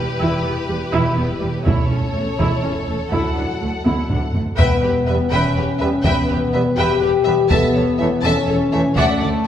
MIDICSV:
0, 0, Header, 1, 10, 480
1, 0, Start_track
1, 0, Tempo, 487013
1, 202, Time_signature, 6, 3, 24, 8
1, 9335, End_track
2, 0, Start_track
2, 0, Title_t, "Violin section"
2, 0, Program_c, 0, 48
2, 0, Note_on_c, 0, 71, 64
2, 1603, Note_off_c, 0, 71, 0
2, 1639, Note_on_c, 0, 73, 59
2, 3078, Note_off_c, 0, 73, 0
2, 3079, Note_on_c, 0, 78, 52
2, 4297, Note_off_c, 0, 78, 0
2, 4517, Note_on_c, 0, 79, 51
2, 4741, Note_off_c, 0, 79, 0
2, 4767, Note_on_c, 0, 71, 43
2, 4846, Note_off_c, 0, 71, 0
2, 5002, Note_on_c, 0, 76, 43
2, 5081, Note_off_c, 0, 76, 0
2, 5236, Note_on_c, 0, 79, 56
2, 5460, Note_off_c, 0, 79, 0
2, 5470, Note_on_c, 0, 71, 51
2, 5548, Note_off_c, 0, 71, 0
2, 5706, Note_on_c, 0, 76, 56
2, 5784, Note_off_c, 0, 76, 0
2, 5950, Note_on_c, 0, 79, 59
2, 6177, Note_off_c, 0, 79, 0
2, 6192, Note_on_c, 0, 71, 42
2, 6270, Note_off_c, 0, 71, 0
2, 6430, Note_on_c, 0, 76, 39
2, 6508, Note_off_c, 0, 76, 0
2, 6671, Note_on_c, 0, 79, 61
2, 6898, Note_off_c, 0, 79, 0
2, 6910, Note_on_c, 0, 71, 55
2, 6989, Note_off_c, 0, 71, 0
2, 7144, Note_on_c, 0, 76, 59
2, 7223, Note_off_c, 0, 76, 0
2, 7389, Note_on_c, 0, 81, 65
2, 7618, Note_off_c, 0, 81, 0
2, 7635, Note_on_c, 0, 73, 51
2, 7714, Note_off_c, 0, 73, 0
2, 7872, Note_on_c, 0, 76, 50
2, 7951, Note_off_c, 0, 76, 0
2, 8114, Note_on_c, 0, 81, 65
2, 8341, Note_off_c, 0, 81, 0
2, 8354, Note_on_c, 0, 73, 53
2, 8433, Note_off_c, 0, 73, 0
2, 8601, Note_on_c, 0, 76, 56
2, 8679, Note_off_c, 0, 76, 0
2, 8847, Note_on_c, 0, 78, 72
2, 9069, Note_off_c, 0, 78, 0
2, 9072, Note_on_c, 0, 74, 45
2, 9151, Note_off_c, 0, 74, 0
2, 9335, End_track
3, 0, Start_track
3, 0, Title_t, "Violin section"
3, 0, Program_c, 1, 48
3, 0, Note_on_c, 1, 67, 50
3, 1600, Note_off_c, 1, 67, 0
3, 1645, Note_on_c, 1, 69, 52
3, 4324, Note_off_c, 1, 69, 0
3, 4519, Note_on_c, 1, 76, 64
3, 4742, Note_off_c, 1, 76, 0
3, 4754, Note_on_c, 1, 67, 46
3, 4832, Note_off_c, 1, 67, 0
3, 5002, Note_on_c, 1, 71, 40
3, 5081, Note_off_c, 1, 71, 0
3, 5243, Note_on_c, 1, 76, 61
3, 5464, Note_off_c, 1, 76, 0
3, 5488, Note_on_c, 1, 67, 53
3, 5567, Note_off_c, 1, 67, 0
3, 5714, Note_on_c, 1, 71, 44
3, 5793, Note_off_c, 1, 71, 0
3, 5960, Note_on_c, 1, 76, 65
3, 6183, Note_off_c, 1, 76, 0
3, 6209, Note_on_c, 1, 67, 38
3, 6288, Note_off_c, 1, 67, 0
3, 6445, Note_on_c, 1, 71, 51
3, 6524, Note_off_c, 1, 71, 0
3, 6677, Note_on_c, 1, 76, 51
3, 6902, Note_off_c, 1, 76, 0
3, 6918, Note_on_c, 1, 67, 52
3, 6996, Note_off_c, 1, 67, 0
3, 7165, Note_on_c, 1, 71, 52
3, 7244, Note_off_c, 1, 71, 0
3, 7396, Note_on_c, 1, 76, 65
3, 7622, Note_off_c, 1, 76, 0
3, 7642, Note_on_c, 1, 69, 40
3, 7721, Note_off_c, 1, 69, 0
3, 7889, Note_on_c, 1, 73, 46
3, 7967, Note_off_c, 1, 73, 0
3, 8125, Note_on_c, 1, 76, 66
3, 8347, Note_off_c, 1, 76, 0
3, 8364, Note_on_c, 1, 69, 63
3, 8443, Note_off_c, 1, 69, 0
3, 8603, Note_on_c, 1, 73, 53
3, 8682, Note_off_c, 1, 73, 0
3, 8842, Note_on_c, 1, 76, 59
3, 9067, Note_off_c, 1, 76, 0
3, 9079, Note_on_c, 1, 69, 50
3, 9158, Note_off_c, 1, 69, 0
3, 9335, End_track
4, 0, Start_track
4, 0, Title_t, "Viola section"
4, 0, Program_c, 2, 48
4, 207, Note_on_c, 2, 64, 60
4, 428, Note_off_c, 2, 64, 0
4, 445, Note_on_c, 2, 59, 45
4, 523, Note_off_c, 2, 59, 0
4, 685, Note_on_c, 2, 55, 51
4, 764, Note_off_c, 2, 55, 0
4, 921, Note_on_c, 2, 64, 75
4, 1144, Note_off_c, 2, 64, 0
4, 1158, Note_on_c, 2, 59, 48
4, 1237, Note_off_c, 2, 59, 0
4, 1390, Note_on_c, 2, 55, 47
4, 1469, Note_off_c, 2, 55, 0
4, 1632, Note_on_c, 2, 64, 55
4, 1859, Note_off_c, 2, 64, 0
4, 1876, Note_on_c, 2, 61, 48
4, 1955, Note_off_c, 2, 61, 0
4, 2121, Note_on_c, 2, 57, 44
4, 2200, Note_off_c, 2, 57, 0
4, 2355, Note_on_c, 2, 64, 63
4, 2580, Note_off_c, 2, 64, 0
4, 2592, Note_on_c, 2, 61, 45
4, 2671, Note_off_c, 2, 61, 0
4, 2836, Note_on_c, 2, 57, 42
4, 2914, Note_off_c, 2, 57, 0
4, 3073, Note_on_c, 2, 64, 58
4, 3299, Note_off_c, 2, 64, 0
4, 3312, Note_on_c, 2, 62, 35
4, 3391, Note_off_c, 2, 62, 0
4, 3556, Note_on_c, 2, 57, 36
4, 3635, Note_off_c, 2, 57, 0
4, 3801, Note_on_c, 2, 64, 47
4, 4023, Note_off_c, 2, 64, 0
4, 4042, Note_on_c, 2, 62, 40
4, 4121, Note_off_c, 2, 62, 0
4, 4278, Note_on_c, 2, 57, 43
4, 4357, Note_off_c, 2, 57, 0
4, 4515, Note_on_c, 2, 71, 61
4, 4740, Note_off_c, 2, 71, 0
4, 4759, Note_on_c, 2, 71, 37
4, 4838, Note_off_c, 2, 71, 0
4, 4998, Note_on_c, 2, 71, 49
4, 5077, Note_off_c, 2, 71, 0
4, 5242, Note_on_c, 2, 71, 61
4, 5463, Note_off_c, 2, 71, 0
4, 5484, Note_on_c, 2, 71, 37
4, 5563, Note_off_c, 2, 71, 0
4, 5719, Note_on_c, 2, 71, 50
4, 5798, Note_off_c, 2, 71, 0
4, 5969, Note_on_c, 2, 71, 63
4, 6188, Note_off_c, 2, 71, 0
4, 6209, Note_on_c, 2, 71, 39
4, 6287, Note_off_c, 2, 71, 0
4, 6446, Note_on_c, 2, 71, 52
4, 6525, Note_off_c, 2, 71, 0
4, 6692, Note_on_c, 2, 71, 63
4, 6909, Note_off_c, 2, 71, 0
4, 6923, Note_on_c, 2, 71, 45
4, 7002, Note_off_c, 2, 71, 0
4, 7161, Note_on_c, 2, 71, 47
4, 7240, Note_off_c, 2, 71, 0
4, 7408, Note_on_c, 2, 69, 59
4, 7628, Note_off_c, 2, 69, 0
4, 7647, Note_on_c, 2, 69, 45
4, 7726, Note_off_c, 2, 69, 0
4, 7893, Note_on_c, 2, 69, 53
4, 7972, Note_off_c, 2, 69, 0
4, 8120, Note_on_c, 2, 69, 63
4, 8344, Note_off_c, 2, 69, 0
4, 8362, Note_on_c, 2, 69, 42
4, 8441, Note_off_c, 2, 69, 0
4, 8602, Note_on_c, 2, 69, 55
4, 8681, Note_off_c, 2, 69, 0
4, 8845, Note_on_c, 2, 74, 72
4, 9068, Note_off_c, 2, 74, 0
4, 9085, Note_on_c, 2, 74, 43
4, 9164, Note_off_c, 2, 74, 0
4, 9335, End_track
5, 0, Start_track
5, 0, Title_t, "French horn section"
5, 0, Program_c, 3, 60
5, 0, Note_on_c, 3, 55, 53
5, 0, Note_on_c, 3, 64, 57
5, 1468, Note_off_c, 3, 55, 0
5, 1468, Note_off_c, 3, 64, 0
5, 1636, Note_on_c, 3, 57, 52
5, 1639, Note_on_c, 3, 61, 46
5, 3048, Note_off_c, 3, 57, 0
5, 3050, Note_off_c, 3, 61, 0
5, 3078, Note_on_c, 3, 54, 46
5, 3081, Note_on_c, 3, 64, 42
5, 4254, Note_off_c, 3, 54, 0
5, 4255, Note_off_c, 3, 64, 0
5, 4530, Note_on_c, 3, 59, 67
5, 5204, Note_off_c, 3, 59, 0
5, 5252, Note_on_c, 3, 61, 77
5, 5962, Note_on_c, 3, 59, 70
5, 5965, Note_off_c, 3, 61, 0
5, 6666, Note_off_c, 3, 59, 0
5, 6676, Note_on_c, 3, 67, 92
5, 7399, Note_off_c, 3, 67, 0
5, 7399, Note_on_c, 3, 59, 79
5, 8107, Note_off_c, 3, 59, 0
5, 8126, Note_on_c, 3, 61, 79
5, 8831, Note_on_c, 3, 57, 91
5, 8846, Note_off_c, 3, 61, 0
5, 9335, Note_off_c, 3, 57, 0
5, 9335, End_track
6, 0, Start_track
6, 0, Title_t, "Trombone section"
6, 0, Program_c, 4, 61
6, 5009, Note_on_c, 4, 59, 53
6, 5017, Note_on_c, 4, 55, 53
6, 5089, Note_off_c, 4, 59, 0
6, 5094, Note_off_c, 4, 55, 0
6, 5727, Note_on_c, 4, 55, 53
6, 5735, Note_on_c, 4, 59, 51
6, 5808, Note_off_c, 4, 55, 0
6, 5813, Note_off_c, 4, 59, 0
6, 6444, Note_on_c, 4, 55, 59
6, 6450, Note_on_c, 4, 59, 58
6, 6526, Note_off_c, 4, 55, 0
6, 6530, Note_off_c, 4, 59, 0
6, 7155, Note_on_c, 4, 59, 55
6, 7158, Note_on_c, 4, 55, 53
6, 7240, Note_off_c, 4, 59, 0
6, 7242, Note_off_c, 4, 55, 0
6, 7874, Note_on_c, 4, 52, 64
6, 7879, Note_on_c, 4, 57, 59
6, 7960, Note_off_c, 4, 52, 0
6, 7964, Note_off_c, 4, 57, 0
6, 8598, Note_on_c, 4, 57, 65
6, 8600, Note_on_c, 4, 52, 57
6, 8684, Note_off_c, 4, 57, 0
6, 8685, Note_off_c, 4, 52, 0
6, 9335, End_track
7, 0, Start_track
7, 0, Title_t, "Cello section"
7, 0, Program_c, 5, 48
7, 203, Note_on_c, 5, 40, 64
7, 282, Note_off_c, 5, 40, 0
7, 443, Note_on_c, 5, 40, 46
7, 522, Note_off_c, 5, 40, 0
7, 681, Note_on_c, 5, 40, 44
7, 760, Note_off_c, 5, 40, 0
7, 927, Note_on_c, 5, 40, 65
7, 1005, Note_off_c, 5, 40, 0
7, 1167, Note_on_c, 5, 40, 44
7, 1246, Note_off_c, 5, 40, 0
7, 1404, Note_on_c, 5, 40, 42
7, 1483, Note_off_c, 5, 40, 0
7, 1649, Note_on_c, 5, 40, 57
7, 1728, Note_off_c, 5, 40, 0
7, 1885, Note_on_c, 5, 40, 40
7, 1964, Note_off_c, 5, 40, 0
7, 2133, Note_on_c, 5, 40, 42
7, 2212, Note_off_c, 5, 40, 0
7, 2367, Note_on_c, 5, 40, 64
7, 2446, Note_off_c, 5, 40, 0
7, 2600, Note_on_c, 5, 40, 40
7, 2679, Note_off_c, 5, 40, 0
7, 2840, Note_on_c, 5, 40, 33
7, 2919, Note_off_c, 5, 40, 0
7, 3078, Note_on_c, 5, 38, 52
7, 3157, Note_off_c, 5, 38, 0
7, 3321, Note_on_c, 5, 38, 38
7, 3400, Note_off_c, 5, 38, 0
7, 3567, Note_on_c, 5, 38, 35
7, 3646, Note_off_c, 5, 38, 0
7, 3806, Note_on_c, 5, 38, 49
7, 3885, Note_off_c, 5, 38, 0
7, 4051, Note_on_c, 5, 38, 37
7, 4130, Note_off_c, 5, 38, 0
7, 4283, Note_on_c, 5, 38, 33
7, 4362, Note_off_c, 5, 38, 0
7, 4522, Note_on_c, 5, 40, 50
7, 4601, Note_off_c, 5, 40, 0
7, 4766, Note_on_c, 5, 40, 41
7, 4845, Note_off_c, 5, 40, 0
7, 5004, Note_on_c, 5, 40, 43
7, 5083, Note_off_c, 5, 40, 0
7, 5240, Note_on_c, 5, 40, 56
7, 5319, Note_off_c, 5, 40, 0
7, 5479, Note_on_c, 5, 40, 47
7, 5557, Note_off_c, 5, 40, 0
7, 5723, Note_on_c, 5, 40, 39
7, 5802, Note_off_c, 5, 40, 0
7, 5954, Note_on_c, 5, 40, 65
7, 6033, Note_off_c, 5, 40, 0
7, 6204, Note_on_c, 5, 40, 45
7, 6283, Note_off_c, 5, 40, 0
7, 6440, Note_on_c, 5, 40, 43
7, 6519, Note_off_c, 5, 40, 0
7, 6677, Note_on_c, 5, 40, 66
7, 6756, Note_off_c, 5, 40, 0
7, 6913, Note_on_c, 5, 40, 51
7, 6991, Note_off_c, 5, 40, 0
7, 7147, Note_on_c, 5, 40, 42
7, 7226, Note_off_c, 5, 40, 0
7, 7392, Note_on_c, 5, 40, 64
7, 7471, Note_off_c, 5, 40, 0
7, 7643, Note_on_c, 5, 40, 42
7, 7722, Note_off_c, 5, 40, 0
7, 7880, Note_on_c, 5, 40, 49
7, 7959, Note_off_c, 5, 40, 0
7, 8121, Note_on_c, 5, 40, 60
7, 8200, Note_off_c, 5, 40, 0
7, 8370, Note_on_c, 5, 40, 52
7, 8449, Note_off_c, 5, 40, 0
7, 8608, Note_on_c, 5, 40, 50
7, 8687, Note_off_c, 5, 40, 0
7, 8842, Note_on_c, 5, 38, 72
7, 8921, Note_off_c, 5, 38, 0
7, 9083, Note_on_c, 5, 38, 51
7, 9162, Note_off_c, 5, 38, 0
7, 9335, End_track
8, 0, Start_track
8, 0, Title_t, "Timpani"
8, 0, Program_c, 6, 47
8, 4520, Note_on_c, 6, 40, 63
8, 5200, Note_off_c, 6, 40, 0
8, 9335, End_track
9, 0, Start_track
9, 0, Title_t, "Double bass section"
9, 0, Program_c, 7, 48
9, 205, Note_on_c, 7, 28, 59
9, 284, Note_off_c, 7, 28, 0
9, 444, Note_on_c, 7, 28, 50
9, 523, Note_off_c, 7, 28, 0
9, 682, Note_on_c, 7, 28, 43
9, 761, Note_off_c, 7, 28, 0
9, 926, Note_on_c, 7, 28, 69
9, 1005, Note_off_c, 7, 28, 0
9, 1161, Note_on_c, 7, 28, 48
9, 1239, Note_off_c, 7, 28, 0
9, 1408, Note_on_c, 7, 28, 49
9, 1487, Note_off_c, 7, 28, 0
9, 1638, Note_on_c, 7, 28, 67
9, 1717, Note_off_c, 7, 28, 0
9, 1880, Note_on_c, 7, 28, 40
9, 1958, Note_off_c, 7, 28, 0
9, 2112, Note_on_c, 7, 28, 40
9, 2191, Note_off_c, 7, 28, 0
9, 2353, Note_on_c, 7, 28, 56
9, 2432, Note_off_c, 7, 28, 0
9, 2599, Note_on_c, 7, 28, 45
9, 2678, Note_off_c, 7, 28, 0
9, 2840, Note_on_c, 7, 28, 37
9, 2919, Note_off_c, 7, 28, 0
9, 3081, Note_on_c, 7, 38, 55
9, 3160, Note_off_c, 7, 38, 0
9, 3321, Note_on_c, 7, 38, 39
9, 3400, Note_off_c, 7, 38, 0
9, 3559, Note_on_c, 7, 38, 31
9, 3638, Note_off_c, 7, 38, 0
9, 3804, Note_on_c, 7, 38, 54
9, 3883, Note_off_c, 7, 38, 0
9, 4048, Note_on_c, 7, 38, 36
9, 4127, Note_off_c, 7, 38, 0
9, 4290, Note_on_c, 7, 38, 33
9, 4368, Note_off_c, 7, 38, 0
9, 4527, Note_on_c, 7, 28, 56
9, 4606, Note_off_c, 7, 28, 0
9, 4761, Note_on_c, 7, 28, 47
9, 4840, Note_off_c, 7, 28, 0
9, 5003, Note_on_c, 7, 28, 42
9, 5082, Note_off_c, 7, 28, 0
9, 5241, Note_on_c, 7, 28, 66
9, 5320, Note_off_c, 7, 28, 0
9, 5486, Note_on_c, 7, 28, 42
9, 5565, Note_off_c, 7, 28, 0
9, 5725, Note_on_c, 7, 28, 46
9, 5804, Note_off_c, 7, 28, 0
9, 5963, Note_on_c, 7, 28, 58
9, 6042, Note_off_c, 7, 28, 0
9, 6202, Note_on_c, 7, 28, 43
9, 6281, Note_off_c, 7, 28, 0
9, 6448, Note_on_c, 7, 28, 36
9, 6527, Note_off_c, 7, 28, 0
9, 6685, Note_on_c, 7, 28, 61
9, 6763, Note_off_c, 7, 28, 0
9, 6924, Note_on_c, 7, 28, 47
9, 7003, Note_off_c, 7, 28, 0
9, 7170, Note_on_c, 7, 28, 46
9, 7248, Note_off_c, 7, 28, 0
9, 7398, Note_on_c, 7, 28, 65
9, 7477, Note_off_c, 7, 28, 0
9, 7645, Note_on_c, 7, 28, 51
9, 7724, Note_off_c, 7, 28, 0
9, 7882, Note_on_c, 7, 28, 43
9, 7961, Note_off_c, 7, 28, 0
9, 8123, Note_on_c, 7, 28, 66
9, 8202, Note_off_c, 7, 28, 0
9, 8365, Note_on_c, 7, 28, 51
9, 8444, Note_off_c, 7, 28, 0
9, 8609, Note_on_c, 7, 28, 50
9, 8688, Note_off_c, 7, 28, 0
9, 8842, Note_on_c, 7, 38, 75
9, 8921, Note_off_c, 7, 38, 0
9, 9081, Note_on_c, 7, 38, 57
9, 9160, Note_off_c, 7, 38, 0
9, 9335, End_track
10, 0, Start_track
10, 0, Title_t, "Taiko and cinematic ensemble drums"
10, 1638, Note_on_c, 9, 41, 85
10, 1737, Note_off_c, 9, 41, 0
10, 2361, Note_on_c, 9, 41, 80
10, 2459, Note_off_c, 9, 41, 0
10, 3076, Note_on_c, 9, 41, 76
10, 3175, Note_off_c, 9, 41, 0
10, 3799, Note_on_c, 9, 48, 68
10, 3898, Note_off_c, 9, 48, 0
10, 4036, Note_on_c, 9, 45, 70
10, 4135, Note_off_c, 9, 45, 0
10, 4276, Note_on_c, 9, 43, 66
10, 4375, Note_off_c, 9, 43, 0
10, 4517, Note_on_c, 9, 41, 81
10, 4615, Note_off_c, 9, 41, 0
10, 5953, Note_on_c, 9, 41, 83
10, 6052, Note_off_c, 9, 41, 0
10, 7398, Note_on_c, 9, 41, 85
10, 7496, Note_off_c, 9, 41, 0
10, 8837, Note_on_c, 9, 41, 78
10, 8935, Note_off_c, 9, 41, 0
10, 9335, End_track
0, 0, End_of_file